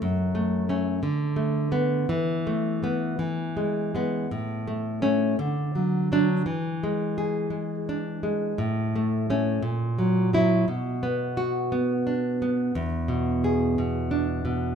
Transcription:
\new Staff \with { instrumentName = "Nylon-string guitar" } { \time 6/8 \key e \mixolydian \tempo 4. = 57 << { r4 cis'8 r4 b8 | r4 b8 r4 b8 | r4 cis'8 r4 d'8 | r4 gis'4 r4 |
r4 cis'8 r4 e'8 | r4 fis'4 r4 | r4 gis'4 r4 | } \\ { fis,8 a8 a8 d8 a8 a8 | e8 a8 a8 e8 gis8 gis8 | a,8 a8 a8 d8 fis8 fis8 | e8 gis4 gis8 d'8 gis8 |
a,8 a8 a8 ais,8 fis8 fis8 | r8 b4 b8 d'8 b8 | e,8 b,4 b,8 d'8 b,8 | } >> }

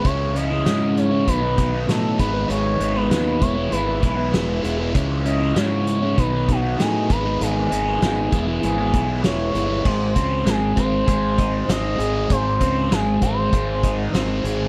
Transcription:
<<
  \new Staff \with { instrumentName = "Analog synth lead" } { \time 4/4 \key gis \phrygian \tempo 4 = 98 cis''8 dis''4 cis''8 b'4 a'8 b'8 | cis''8. b'8. cis''8 b'8 b'4 r8 | r8 dis''8 cis''4 b'8 fis'8 gis'8 b'8 | gis'2 gis'4 cis''4 |
bis'4 gis'8 bis'4. dis''4 | bis'4 gis'8 bis'2 r8 | }
  \new Staff \with { instrumentName = "Overdriven electric guitar" } { \time 4/4 \key gis \phrygian <cis gis cis' e'>8 <cis gis cis' e'>16 <gis cis' e'>16 <cis gis cis' e'>8. <gis cis' e'>16 <b, dis fis b dis'>16 <fis b dis'>16 <dis fis b dis'>16 <fis b dis'>16 <b, dis fis b dis'>8 <gis, dis gis b dis'>16 <gis b dis'>16 | <gis, dis gis b dis'>8 <dis gis b dis'>16 <gis b dis'>16 <gis, dis gis b dis'>8 <e gis b e'>16 <gis b e'>16 <e gis b e'>16 <gis b e'>16 <e gis b e'>16 <gis b e'>16 <e gis b e'>8 <e gis b e'>16 <gis b e'>16 | <cis gis cis' e'>8 <cis gis cis' e'>16 <gis cis' e'>16 <cis gis cis' e'>8. <gis cis' e'>16 <b, dis fis b dis'>16 <fis b dis'>16 <dis fis b dis'>16 <fis b dis'>16 <b, dis fis b dis'>8 <gis, dis gis b dis'>16 <gis b dis'>16 | <gis, dis gis b dis'>8 <dis gis b dis'>16 <gis b dis'>16 <gis, dis gis b dis'>8 <e gis b e'>16 <gis b e'>16 <e gis b e'>16 <gis b e'>16 <e gis b e'>16 <gis b e'>16 <e gis b e'>8 <e gis b e'>16 <gis b e'>16 |
gis,8 bis8 gis8 bis8 gis'8 dis'8 bis8 gis'8 | gis,8 bis8 gis8 bis8 gis'8 dis'8 bis8 gis'8 | }
  \new Staff \with { instrumentName = "Fingered electric bass" } { \clef bass \time 4/4 \key gis \phrygian cis,4 gis,4 b,,4 a,8 gis,,8 | gis,,8 gis,,8 dis,8 e,,8 gis,,8 b,,8 e,,8 e,,8 | cis,4 gis,4 b,,4 a,8 gis,,8 | gis,,8 gis,,8 gis,,8 e,,8 gis,,8 b,,8 e,,8 g,,8 |
gis,,8 cis,8 gis,,8 gis,,8 gis,,4 gis,,8 gis,,8 | gis,,8 cis,8 gis,,8 gis,,8 gis,,4 gis,,8 gis,,8 | }
  \new DrumStaff \with { instrumentName = "Drums" } \drummode { \time 4/4 <hh bd>8 hh8 <hh sn>8 hh8 <hh bd>8 <hh bd>8 <hh sn>8 <hh bd>8 | hh8 hh8 <hh sn>8 <hh bd>8 hh8 <hh bd>8 <hh sn>8 hh8 | <hh bd>8 hh8 <hh sn>8 hh8 <hh bd>8 <hh bd>8 <hh sn>8 <hh bd>8 | hh8 hh8 <hh sn>8 <hh bd>8 hh8 <hh bd>8 <hh sn>8 hh8 |
<cymc bd>8 <hh bd>8 <hh sn>8 <hh bd>8 <hh bd>8 <hh bd>8 <hh sn>8 hh8 | <hh bd>8 <hh bd>8 <hh sn>8 <hh bd>8 <hh bd>8 <hh bd>8 <hh sn>8 hh8 | }
>>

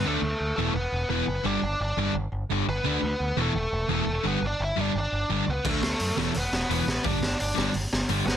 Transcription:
<<
  \new Staff \with { instrumentName = "Lead electric guitar" } { \time 4/4 \key g \major \tempo 4 = 172 <a a'>4. <a a'>8 <b b'>4 <b b'>4 | <d' d''>4 <d' d''>4 r4. <b b'>8~ | <b b'>4. <a a'>4. <a a'>4 | <b b'>8 <d' d''>8 <e' e''>8 <d' d''>8 <d' d''>4. <b b'>8 |
<a a'>4. <a a'>8 <b b'>4 <b b'>4 | <d' d''>4 <d' d''>4 r4. <b b'>8 | }
  \new Staff \with { instrumentName = "Distorted electric guitar" } { \clef bass \time 4/4 \key g \major <d a d'>8 r4 <e, b, e>8 r4 <e, b, e>8 r8 | <g, d g>8 r4 <g, d g>8 r4 <g, d g>8 r8 | <d a d'>8 r4 <e, b, e>8 r4 <e, b, e>8 r8 | <g, d g>8 r4 <g, d g>8 r4 <g, d g>8 r8 |
<d a d'>8 r4 <e, b, e>8 r4 <e, b, e>8 r8 | <g, d g>8 r4 <g, d g>8 r4 <g, d g>8 r8 | }
  \new Staff \with { instrumentName = "Overdriven electric guitar" } { \clef bass \time 4/4 \key g \major <d a d'>8 r4 <e, b, e>8 r4 <e, b, e>8 r8 | <g, d g>8 r4 <g, d g>8 r4 <g, d g>8 r8 | <d a d'>8 r4 <e, b, e>8 r4 <e, b, e>8 r8 | <g, d g>8 r4 <g, d g>8 r4 <g, d g>8 r8 |
<d a d'>8 r4 <e, b, e>8 r4 <e, b, e>8 r8 | <g, d g>8 r4 <g, d g>8 r4 <g, d g>8 r8 | }
  \new Staff \with { instrumentName = "Picked electric bass" } { \clef bass \time 4/4 \key g \major d,8 d,8 d,8 e,,8 e,,8 e,,8 e,,8 fis,,8 | g,,8 g,,8 g,,8 g,,8 g,,8 g,,8 g,,8 g,,8 | d,8 d,8 d,8 e,,8 e,,8 e,,8 e,,8 e,,8 | g,,8 g,,8 g,,8 g,,8 g,,8 g,,8 g,,8 cis,8 |
d,8 d,8 fis,8 e,,8 e,,8 e,,8 e,,8 a,,8 | g,,8 g,,8 g,,8 g,,8 g,,8 g,,8 g,,8 g,,8 | }
  \new DrumStaff \with { instrumentName = "Drums" } \drummode { \time 4/4 r4 r4 r4 r4 | r4 r4 r4 r4 | r4 r4 r4 r4 | r4 r4 r4 r4 |
<cymc bd>8 sn8 hho8 sn8 hho8 sn8 hho8 sn8 | <hho bd>8 sn8 hho8 sn8 hho8 sn8 hho8 sn8 | }
>>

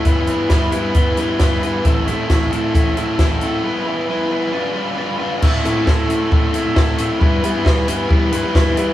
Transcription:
<<
  \new Staff \with { instrumentName = "Overdriven electric guitar" } { \time 4/4 \key a \minor \tempo 4 = 134 <g b e' b'>8 <g b e' b'>8 <g b e' b'>8 <g b e' b'>8 <g b e' b'>8 <g b e' b'>8 <g b e' b'>8 <g b e' b'>8 | <a c' e' a'>8 <a c' e' a'>8 <a c' e' a'>8 <a c' e' a'>8 <a c' e' a'>8 <a c' e' a'>8 <a c' e' a'>8 <a c' e' a'>8 | <g b e' b'>8 <g b e' b'>8 <g b e' b'>8 <g b e' b'>8 <g d' f' b'>8 <g d' f' b'>8 <g d' f' b'>8 <g d' f' b'>8 | <a c' e' a'>8 <a c' e' a'>8 <a c' e' a'>8 <a c' e' a'>8 <a c' e' a'>8 <a c' e' a'>8 <a c' e' a'>8 <a c' e' a'>8 |
<g b e' b'>8 <g b e' b'>8 <g b e' b'>8 <g b e' b'>8 <g b e' b'>8 <g b e' b'>8 <g b e' b'>8 <g b e' b'>8 | }
  \new Staff \with { instrumentName = "Picked electric bass" } { \clef bass \time 4/4 \key a \minor g,,8 g,8 g,,8 g,8 g,,8 g,8 g,,8 g,8 | a,,8 a,8 a,,8 a,8 a,,8 a,8 a,,8 a,8 | r1 | a,8 a,16 a,16 a,8 a,8 a,8 a,16 a,16 a,8 a,16 r16 |
g,8 g16 g,16 g8 g,8 g8 g,16 g16 g,8 g16 r16 | }
  \new DrumStaff \with { instrumentName = "Drums" } \drummode { \time 4/4 <hh bd>8 hh8 <hh bd sn>8 hh8 <hh bd>8 hh8 <hh bd sn>8 hh8 | <hh bd>8 hh8 <hh bd sn>8 hh8 <hh bd>8 hh8 <hh bd sn>8 hh8 | r4 r4 r4 r4 | <cymc bd>8 hh8 <bd sn>8 hh8 bd8 hh8 <bd sn>8 hh8 |
bd8 hh8 <bd sn>8 <hh sn>8 bd8 hh8 <bd sn>8 hh8 | }
>>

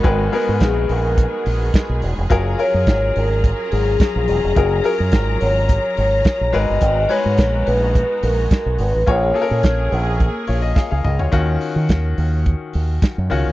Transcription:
<<
  \new Staff \with { instrumentName = "Vibraphone" } { \time 4/4 \key ees \minor \tempo 4 = 106 bes'4 aes'8 bes'2 r8 | r8 des''4 bes'4 aes'4 aes'8 | aes'8 bes'4 des''4 des''4 ees''8 | ees''8 des''4 ces''4 bes'4 ces''8 |
des''4. r2 r8 | r1 | }
  \new Staff \with { instrumentName = "Grand piano" } { \time 4/4 \key ees \minor << { r1 | r1 | r1 | r1 |
r2 r8 <f' des''>16 ees''16 <aes' f''>16 <aes' f''>16 ees''16 <f' des''>16~ | <f' des''>16 r2. r8. | } \\ { <aes ges' bes' ces''>8 <aes ces' ges' bes'>4. r2 | <ges f' aes' bes'>8 <ges f' aes' bes'>4. r2 | <ges f' aes' bes'>8 <ges f' aes' bes'>4. r4. <aes ges' bes' ces''>8~ | <aes ges' bes' ces''>8 <aes ges' aes' ces''>4. r2 |
<bes f' aes' des''>8 <bes f' aes' a' bes'>4. r2 | <ees des' f' ges'>4. r2 <ees des' f' ges'>8 | } >> }
  \new Staff \with { instrumentName = "String section" } { \time 4/4 \key ees \minor <aes ces' ees' ges' aes'>1 | <ges des' f' bes''>1~ | <ges des' f' bes''>2.~ <ges des' f' bes''>8 <aes ces' ees' ges'>8~ | <aes ces' ees' ges'>1 |
<bes des' aes'>1 | r1 | }
  \new Staff \with { instrumentName = "Fingered electric bass" } { \clef bass \time 4/4 \key ees \minor aes,,8 r16 aes,16 bes,,8 bes,,8. r16 bes,,8 r16 ces,16 fes,,16 f,,16 | ges,,8 r16 ges,16 aes,,8 aes,,8. r16 aes,,8 r16 bes,,16 fes,,16 f,,16 | ges,,8 r16 ges,16 aes,,8 aes,,8. r16 aes,,8 r16 bes,,16 aes,,16 g,,16 | aes,,8 r16 aes,16 bes,,8 bes,,8. r16 bes,,8 r16 ces,16 aes,,16 a,,16 |
bes,,8 r16 bes,16 bes,,8 bes,,8. r16 bes,,8 r16 des,16 des,16 d,16 | ees,8 r16 ees16 ees,8 ees,8. r16 ees,8 r16 ges,16 des,16 d,16 | }
  \new DrumStaff \with { instrumentName = "Drums" } \drummode { \time 4/4 <hh bd>8 hho8 <hh bd sn>8 hho8 <hh bd>8 hho8 <hh bd sn>8 hho8 | <hh bd>8 hho8 <hh bd sn>8 hho8 <hh bd>8 hho8 <hh bd sn>8 hho8 | <hh bd>8 hho8 <hh bd sn>8 hho8 <hh bd>8 hho8 <hh bd sn>8 hho8 | <hh bd>8 hho8 <hh bd sn>8 hho8 <hh bd>8 hho8 <hh bd sn>8 hho8 |
<hh bd>8 hho8 <hh bd sn>8 hho8 <hh bd>8 hho8 <bd sn>8 toml16 tomfh16 | <hh bd>8 hho8 <hh bd sn>8 hho8 <hh bd>8 hho8 <hh bd sn>8 hho8 | }
>>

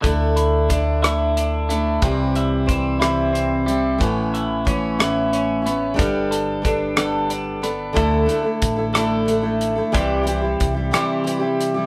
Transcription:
<<
  \new Staff \with { instrumentName = "Clean electric guitar" } { \time 6/8 \key d \lydian \tempo 4. = 61 d8 e'8 d'8 e'8 d'8 a8 | c8 e'8 c'8 e'8 c'8 g8 | a,8 e'8 cis'8 e'8 cis'8 b8 | g8 a'8 d'8 a'8 d'8 b8 |
<d a e' a'>4. <d a e' a'>4. | <c e g e' g'>4. <c e g e' g'>4. | }
  \new Staff \with { instrumentName = "Steel-string acoustic guitar" } { \time 6/8 \key d \lydian <d a d' e'>4 <d a d' e'>8 <d a d' e'>4 <a d' e'>8 | <c e g c' e'>4 <e g c' e'>8 <c e g c' e'>4 <g c' e'>8 | <a, e b cis' e'>4 <e b cis' e'>8 <a, e b cis' e'>4 <b cis' e'>8 | <g b d' a'>4 <g b d' a'>8 <g b d' a'>4 <b d' a'>8 |
<d a e' a'>8 <d a e' a'>16 <a e' a'>8 <a e' a'>16 <d a e' a'>8 <d a e' a'>16 <a e' a'>8 <a e' a'>16 | <c e g e' g'>8 <e g e' g'>16 <g e' g'>8 <g e' g'>16 <c e g e' g'>8 <e g e' g'>16 <g e' g'>8 <g e' g'>16 | }
  \new Staff \with { instrumentName = "Fretless electric bass" } { \clef bass \time 6/8 \key d \lydian d,2. | c,2. | a,,2. | g,,2. |
d,8 r8 a,,2 | c,4 c,8 r4. | }
  \new DrumStaff \with { instrumentName = "Drums" } \drummode { \time 6/8 <hh bd>8 hh8 <hh bd>8 <hh ss>8 hh8 hh8 | <hh bd>8 hh8 <hh bd>8 <hh ss>8 hh8 hh8 | <hh bd>8 hh8 <hh bd>8 <hh ss>8 hh8 hh8 | <hh bd>8 hh8 <hh bd>8 <hh ss>8 hh8 hh8 |
<hh bd>8 hh8 <hh bd>8 <hh ss>8 hh8 hh8 | <hh bd>8 hh8 <hh bd>8 <hh ss>8 hh8 hh8 | }
>>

